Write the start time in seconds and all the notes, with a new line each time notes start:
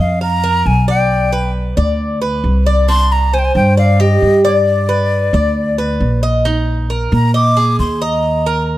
Already playing: D#5
0.00 F2 F5
0.21 F5 A#5
0.44 A#4
0.66 B1 G#5
0.88 D5 G5
1.33 B4
1.77 D2 D5
2.22 B4
2.44 C2
2.66 D5
2.88 D4 C6
3.12 A#5
3.33 C5 G#5
3.39 G5
3.44 G#5
3.55 G2 G5
3.77 D5 F5
4.00 G4 D#5
4.22 G2
4.45 D5
4.89 B4
5.33 D2 D5
5.78 B4
6.00 A#1
6.23 D#5
6.45 D#4
6.90 A#4
7.12 A#2 A#5
7.34 D#5 D6
7.57 G#4
7.79 D#2 C6
8.02 D#5 A#5
8.46 A#4